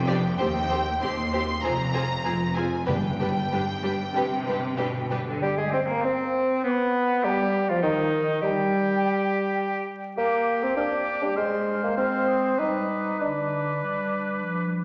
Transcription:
0.00 0.31 F1 medium
0.00 0.32 F2 medium
0.00 0.37 G5 medium
0.07 0.17 B3 medium
0.07 0.17 D4 medium
0.07 0.15 G4 medium
0.07 0.15 D5 medium
0.38 0.95 D#2 medium
0.38 0.48 C4 medium
0.38 0.46 G4 medium
0.38 0.48 G4 medium
0.38 0.46 C5 medium
0.38 1.01 G5 loud
0.70 0.80 C4 medium
0.70 0.78 G4 medium
0.70 0.80 G4 medium
0.70 0.79 C5 medium
1.02 1.56 D#2 medium
1.02 1.11 C4 medium
1.02 1.11 G4 medium
1.02 1.11 C5 medium
1.02 1.62 C6 medium
1.32 1.42 C4 soft
1.32 1.41 G4 medium
1.32 1.42 G4 medium
1.32 1.40 C5 medium
1.62 2.17 F1 medium
1.62 2.17 F2 medium
1.62 1.72 C4 medium
1.62 1.72 F4 medium
1.62 1.71 G#4 medium
1.62 1.72 C5 medium
1.62 2.55 A#5 loud
1.94 2.03 C4 soft
1.94 2.03 F4 medium
1.94 2.02 G#4 medium
1.94 2.02 C5 medium
2.24 2.80 F1 medium
2.24 2.80 F2 medium
2.24 2.33 C4 medium
2.24 2.33 F4 medium
2.24 2.32 G#4 medium
2.24 2.32 C5 soft
2.55 2.64 C4 soft
2.55 2.65 F4 soft
2.55 2.64 G#4 medium
2.55 2.64 C5 soft
2.55 2.87 G#5 medium
2.87 3.45 G1 medium
2.87 3.44 G2 medium
2.87 3.79 G2 medium
2.87 2.96 G3 medium
2.87 2.96 D4 medium
2.87 2.95 G4 medium
2.87 2.95 B4 medium
2.87 5.06 G5 medium
3.19 3.29 G3 soft
3.19 3.29 D4 medium
3.19 3.27 G4 soft
3.19 3.28 B4 soft
3.51 4.07 G1 medium
3.51 4.11 G2 medium
3.51 3.60 G3 medium
3.51 3.60 D4 soft
3.51 3.59 G4 soft
3.51 3.59 B4 soft
3.83 3.91 G3 soft
3.83 3.91 D4 soft
3.83 3.91 G4 soft
3.83 3.91 B4 medium
4.14 4.71 G1 medium
4.14 4.77 C3 medium
4.14 4.23 G3 soft
4.14 4.22 D4 medium
4.14 4.24 G4 medium
4.14 4.24 B4 medium
4.47 4.55 G3 soft
4.47 4.55 D4 soft
4.47 4.55 G4 soft
4.47 4.56 B4 medium
4.78 5.34 G1 medium
4.78 5.26 B2 medium
4.78 4.86 G3 soft
4.78 4.86 D4 soft
4.78 4.86 G4 medium
4.78 4.86 B4 soft
5.10 5.18 G3 soft
5.10 5.18 D4 medium
5.10 5.18 G4 soft
5.10 5.18 B4 soft
5.27 5.42 D3 medium
5.41 5.56 G3 medium
5.41 5.60 G3 medium
5.41 5.57 G4 medium
5.41 5.56 G5 soft
5.56 5.74 G#3 soft
5.56 5.73 G#3 soft
5.56 5.72 G#4 soft
5.56 5.74 G#5 soft
5.71 5.88 C4 soft
5.71 5.86 C4 soft
5.71 5.81 C4 medium
5.71 5.88 C5 soft
5.87 6.03 A#3 medium
5.87 6.04 A#3 soft
5.87 6.06 A#5 medium
5.91 6.04 A#3 soft
6.02 6.63 C4 medium
6.02 6.65 C4 medium
6.02 6.66 C4 medium
6.02 6.65 C5 medium
6.64 7.25 B3 medium
6.64 7.26 B3 medium
6.64 7.27 B3 medium
6.64 6.72 D6 medium
6.71 7.27 B5 medium
7.24 7.68 G3 medium
7.24 7.72 G3 medium
7.24 7.71 G4 medium
7.24 7.31 A#5 medium
7.30 7.70 G5 medium
7.69 7.85 F3 medium
7.69 7.83 F3 medium
7.69 7.82 F4 soft
7.69 7.82 F5 medium
7.82 8.42 D#3 medium
7.82 8.44 D#3 medium
7.82 8.41 D#4 medium
7.82 8.41 D#5 medium
8.42 9.89 G3 medium
8.42 9.86 G3 medium
8.42 9.86 G4 medium
8.42 8.48 A#5 medium
8.47 9.86 G5 medium
10.17 11.32 A#3 medium
10.17 10.64 A#3 medium
10.17 10.73 G4 medium
10.17 10.73 D6 soft
10.63 10.76 C4 medium
10.76 11.25 D4 medium
10.76 11.35 G4 soft
10.76 10.82 F6 medium
10.81 11.38 D6 medium
11.23 11.37 G3 medium
11.36 12.55 G#3 medium
11.36 11.81 G#3 medium
11.36 11.95 C5 soft
11.36 11.97 F6 soft
11.84 11.97 A#3 soft
11.96 12.61 C4 medium
11.96 12.60 C5 soft
11.96 12.29 F6 soft
12.27 12.60 D#6 soft
12.57 13.12 G3 soft
12.57 13.23 D#4 medium
12.57 13.19 B4 soft
12.57 13.20 D6 soft
13.19 13.85 D3 soft
13.19 14.75 D4 soft
13.19 14.71 B4 soft
13.19 14.71 D6 soft
13.83 14.43 G3 soft
14.42 14.84 F3 soft

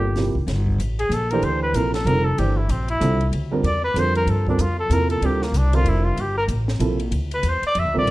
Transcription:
0.00 0.31 G1 medium
0.00 0.33 A#2 medium
0.00 0.32 G4 medium
0.16 0.34 C3 medium
0.16 0.34 F3 medium
0.16 0.34 A#3 medium
0.16 0.34 E4 medium
0.16 0.35 G4 medium
0.16 snare soft
0.16 open hi-hat soft
0.35 0.46 F1 medium
0.35 kick soft
0.47 0.78 G1 medium
0.47 snare soft
0.47 ride medium
0.67 kick medium
0.78 1.09 A1 medium
0.78 hi-hat pedal medium
0.78 ride medium
0.99 1.15 G#4 medium
0.99 ride soft
1.09 1.41 A#1 medium
1.09 hi-hat pedal soft
1.09 ride medium
1.14 1.33 A4 medium
1.31 1.73 E3 medium
1.31 1.73 A3 medium
1.31 1.73 D4 medium
1.31 1.73 G4 medium
1.31 1.46 A#4 medium
1.31 1.73 C5 medium
1.31 ride soft
1.42 1.73 D2 medium
1.42 1.62 C5 medium
1.42 ride medium
1.63 1.77 B4 medium
1.73 2.04 A#1 medium
1.73 1.92 C3 medium
1.73 1.92 F3 medium
1.73 1.92 A#3 medium
1.73 1.92 E4 medium
1.73 1.92 A4 medium
1.73 1.94 A#4 medium
1.73 hi-hat pedal medium
1.73 ride medium
1.94 2.08 A4 medium
1.94 snare medium
1.94 ride soft
2.05 2.36 F1 loud
2.05 2.23 D3 medium
2.05 2.23 G3 medium
2.05 2.23 C4 medium
2.05 2.24 F4 medium
2.05 2.24 A4 medium
2.05 2.26 A#4 loud
2.05 ride medium
2.25 2.40 A4 medium
2.38 2.68 G1 medium
2.38 2.55 E3 medium
2.38 2.56 A3 medium
2.38 2.56 D4 soft
2.38 2.59 G4 medium
2.38 2.56 G4 medium
2.38 2.56 C5 medium
2.38 ride medium
2.57 2.72 E4 medium
2.69 3.00 A#1 medium
2.69 2.89 C4 medium
2.69 hi-hat pedal soft
2.69 ride medium
2.88 3.30 E4 loud
2.88 ride soft
3.00 3.31 C2 loud
3.00 3.18 D3 medium
3.00 3.18 G3 medium
3.00 3.18 C4 medium
3.00 3.18 F4 medium
3.00 3.18 A4 medium
3.00 hi-hat pedal medium
3.00 ride medium
3.21 ride soft
3.32 3.62 D2 medium
3.32 ride medium
3.51 3.62 D3 medium
3.51 3.63 G3 medium
3.51 3.63 C4 medium
3.51 3.63 F4 medium
3.51 3.63 A#4 medium
3.63 3.94 E2 medium
3.63 3.83 D5 medium
3.63 ride medium
3.84 4.01 B4 loud
3.94 4.26 F2 medium
3.94 4.42 D3 medium
3.94 4.43 G3 medium
3.94 4.43 C4 medium
3.94 4.43 F4 medium
3.94 4.43 A#4 medium
3.94 hi-hat pedal medium
3.94 ride medium
3.99 4.16 C5 loud
4.15 4.32 A#4 medium
4.15 ride soft
4.26 4.57 G2 medium
4.26 4.48 A4 medium
4.26 ride medium
4.47 4.58 D3 medium
4.47 4.58 G3 medium
4.47 4.59 C4 medium
4.47 4.62 D4 medium
4.47 4.59 F4 medium
4.47 4.59 A#4 medium
4.47 kick medium
4.58 4.89 F2 medium
4.58 4.79 F4 medium
4.58 hi-hat pedal medium
4.58 ride medium
4.80 4.95 A4 medium
4.90 5.21 E2 medium
4.90 5.38 C3 medium
4.90 5.38 A#3 medium
4.90 5.38 E4 medium
4.90 5.22 F4 medium
4.90 5.38 A4 medium
4.90 5.10 A#4 medium
4.90 hi-hat pedal medium
4.90 ride medium
5.10 5.27 A4 medium
5.10 ride soft
5.21 5.51 D2 medium
5.21 5.40 D3 medium
5.21 5.40 G3 medium
5.21 5.40 C4 medium
5.21 5.40 F4 medium
5.21 5.40 A#4 medium
5.21 ride medium
5.26 5.45 G4 medium
5.42 5.59 A#3 medium
5.42 snare soft
5.52 5.83 C2 medium
5.52 hi-hat pedal medium
5.52 ride medium
5.57 5.77 D4 medium
5.73 6.15 D3 medium
5.73 6.15 G3 medium
5.73 6.15 C4 medium
5.73 6.15 F4 medium
5.73 5.91 F4 loud
5.73 6.15 A#4 medium
5.73 ride medium
5.84 6.15 F1 medium
5.84 ride medium
5.89 6.06 E4 medium
6.05 6.23 F4 medium
6.17 6.47 G1 medium
6.17 ride medium
6.21 6.37 G4 medium
6.38 6.45 A#4 medium
6.48 6.79 A1 medium
6.48 hi-hat pedal medium
6.48 ride medium
6.68 snare soft
6.80 7.11 A#1 medium
6.80 6.98 C3 medium
6.80 6.98 F3 medium
6.80 6.98 A#3 medium
6.80 6.98 E4 medium
6.80 6.98 A4 medium
6.80 hi-hat pedal medium
6.80 ride medium
7.00 ride soft
7.11 7.42 D2 medium
7.11 ride medium
7.31 7.51 B4 medium
7.31 ride soft
7.43 7.61 E2 medium
7.43 hi-hat pedal soft
7.43 ride medium
7.49 7.66 C5 medium
7.62 muted upright bass stroke soft
7.62 ride medium
7.67 7.81 D5 loud
7.75 7.85 F2 medium
7.75 ride medium
7.79 7.96 E5 loud
7.85 7.95 D2 medium
7.94 8.05 A#1 medium
7.94 8.11 D3 medium
7.94 8.11 G3 medium
7.94 8.11 C4 medium
7.94 8.11 F4 medium
7.94 8.11 A#4 medium
7.99 8.11 D5 loud
8.05 8.11 D2 medium
8.05 ride medium

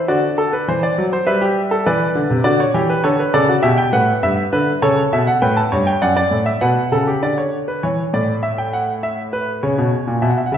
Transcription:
0.08 0.66 D3 medium
0.08 0.27 F#4 medium
0.08 0.82 D5 medium
0.38 0.53 A4 medium
0.53 0.68 B4 medium
0.68 0.87 E3 medium
0.68 0.83 C5 medium
0.83 1.02 D5 medium
0.98 1.17 F#3 medium
1.13 1.27 C5 medium
1.27 1.85 G3 medium
1.27 1.42 B4 medium
1.27 1.84 E5 medium
1.41 1.60 G4 medium
1.71 1.86 A4 medium
1.86 2.05 E3 medium
1.86 2.44 B4 medium
1.86 2.43 D5 medium
2.15 2.30 D3 medium
2.31 2.45 C3 medium
2.44 2.63 D3 medium
2.44 2.63 F#4 medium
2.44 2.59 D5 medium
2.60 2.79 C#5 medium
2.74 2.93 E3 medium
2.74 2.93 G4 medium
2.90 3.04 B4 medium
3.04 3.23 D3 medium
3.04 3.19 A4 medium
3.04 3.22 C#5 medium
3.19 3.34 B4 medium
3.34 3.52 C#3 medium
3.34 3.49 A4 medium
3.34 3.52 D5 medium
3.48 3.63 F#4 medium
3.63 3.82 B2 medium
3.63 3.82 G4 medium
3.63 3.78 E5 loud
3.78 3.93 G5 medium
3.93 4.11 A2 medium
3.93 4.51 B4 medium
3.93 4.12 F#5 medium
4.23 4.42 G2 medium
4.23 4.42 E5 medium
4.53 4.71 D3 medium
4.53 4.71 B4 medium
4.82 5.01 C#3 medium
4.82 5.41 A4 medium
4.82 5.01 C#5 medium
5.13 5.31 B2 medium
5.13 5.27 E5 medium
5.27 5.42 F#5 medium
5.42 5.61 A2 medium
5.42 5.61 B4 medium
5.42 5.57 G5 medium
5.57 5.75 A5 medium
5.72 5.91 G2 medium
5.72 5.91 C#5 medium
5.87 6.02 G5 medium
6.02 6.21 F#2 medium
6.02 6.15 D5 medium
6.02 6.17 F#5 medium
6.17 6.35 D5 medium
6.31 6.50 A2 medium
6.46 6.61 E5 medium
6.61 6.80 B2 medium
6.61 6.80 B4 medium
6.61 7.21 F#5 medium
6.92 7.11 C#3 medium
6.92 7.07 A4 medium
7.07 7.22 G4 medium
7.23 7.81 D3 medium
7.23 7.38 D5 medium
7.38 7.57 C#5 medium
7.68 7.83 B4 medium
7.83 8.02 E3 medium
7.83 8.02 C#5 medium
8.13 9.58 A2 medium
8.13 8.32 D5 medium
8.43 8.57 E5 medium
8.58 8.73 G5 medium
8.73 8.92 F#5 medium
9.03 9.22 E5 medium
9.33 9.51 B4 medium
9.63 9.77 C#3 medium
9.63 10.20 C#5 medium
9.78 9.96 B2 medium
10.07 10.21 A#2 medium
10.22 10.40 B2 medium
10.22 10.30 E5 medium
10.30 10.38 F#5 medium
10.38 10.46 E5 soft
10.46 10.54 F#5 medium
10.52 10.58 C#3 medium
10.52 10.58 E5 medium

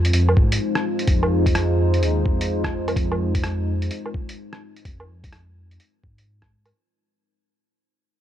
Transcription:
0.00 0.12 F2 medium
0.00 6.70 G#3 medium
0.00 6.70 D#4 medium
0.00 6.70 F4 medium
0.00 6.70 C5 medium
0.05 closed hi-hat soft
0.13 0.35 F2 loud
0.13 closed hi-hat medium
0.29 low woodblock medium
0.37 0.59 G#2 loud
0.37 kick loud
0.52 closed hi-hat medium
0.75 cross-stick loud
0.99 closed hi-hat soft
1.07 2.04 F2 medium
1.07 kick loud
1.07 closed hi-hat medium
1.23 low woodblock medium
1.46 kick loud
1.46 closed hi-hat medium
1.55 cross-stick loud
1.55 closed hi-hat medium
1.94 closed hi-hat soft
2.02 2.24 D#2 medium
2.02 closed hi-hat medium
2.25 2.95 F2 medium
2.25 kick loud
2.41 closed hi-hat medium
2.64 kick medium
2.64 cross-stick loud
2.88 closed hi-hat soft
2.88 low woodblock medium
2.96 3.89 F2 medium
2.96 kick loud
2.96 closed hi-hat medium
3.12 low woodblock medium
3.35 kick loud
3.35 closed hi-hat medium
3.44 cross-stick loud
3.44 closed hi-hat medium
3.82 closed hi-hat soft
3.91 closed hi-hat medium
4.06 low woodblock soft
4.14 kick loud
4.29 closed hi-hat medium
4.53 cross-stick loud
4.76 closed hi-hat soft
4.85 5.78 F2 medium
4.85 kick loud
4.85 closed hi-hat medium
5.00 low woodblock medium
5.24 kick loud
5.24 closed hi-hat medium
5.33 cross-stick loud
5.33 closed hi-hat medium
5.71 closed hi-hat soft
5.80 closed hi-hat medium
6.04 6.26 G#2 medium
6.04 kick loud
6.18 closed hi-hat soft
6.26 6.73 G#2 medium
6.42 kick medium
6.42 cross-stick loud
6.66 closed hi-hat soft
6.66 low woodblock medium

